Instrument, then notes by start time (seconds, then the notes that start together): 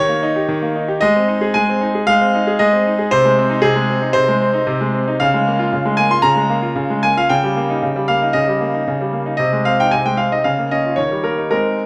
grand piano
Already playing: D#3 C#5
0.09 A#3
0.23 D#4
0.36 G4
0.48 D#3
0.62 A#3
0.76 D#4
0.88 G4
1.01 G#3 D#5
1.16 C4
1.28 D#4
1.41 G#4
1.54 G#3 G#5
1.69 C4
1.81 D#4
1.95 G#4
2.07 G#3 F5
2.21 C4
2.35 D#4
2.47 G#4
2.59 G#3 D#5
2.73 C4
2.87 D#4
2.99 G#4
3.11 C3 C5
3.25 G#3
3.38 C4
3.50 D#4
3.62 C3 G#4
3.76 G#3
3.89 C4
4.02 D#4
4.13 C3 C5
4.28 G#3
4.41 C4
4.53 D#4
4.67 C3
4.81 G#3
4.94 C4
5.08 D#4
5.20 C#3 F5
5.34 G#3
5.47 A#3
5.59 F4
5.73 C#3
5.85 G#3
5.97 A#3 G#5
6.11 F4 C6
6.22 C#3 A#5
6.36 G#3
6.49 A#3
6.62 F4
6.76 C#3
6.90 G#3
7.03 A#3 G#5
7.17 F4 F5
7.29 C#3 G5
7.44 G3
7.56 A#3
7.70 D#4
7.83 C#3
7.96 G3
8.08 A#3 F5
8.22 D#4
8.33 C#3 D#5
8.48 G3
8.61 A#3
8.74 D#4
8.88 C#3
9.01 G3
9.13 A#3
9.26 D#4
9.37 C3 D#5
9.53 G#3
9.65 C4 F5
9.80 D#4 G5
9.91 C3 G#5
10.05 G#3 G5
10.17 C4 F5
10.32 D#4 D#5
10.44 C#3 F5
10.59 A#3
10.71 C#4 D#5
10.86 F4
10.96 D#3 C#5
11.11 G3
11.24 A#3 A#4
11.38 D#4
11.51 G#3 C4 D#4 A#4